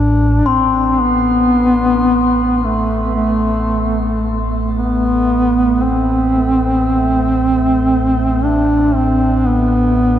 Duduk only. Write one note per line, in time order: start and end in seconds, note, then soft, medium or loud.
0.00 0.49 D4 loud
0.48 1.02 C4 medium
1.01 2.65 B3 loud
2.64 3.14 A3 medium
3.15 4.43 A3 loud
4.76 5.84 B3 loud
5.82 8.46 C4 loud
8.44 8.96 D4 medium
8.94 9.49 C4 loud
9.47 10.19 B3 loud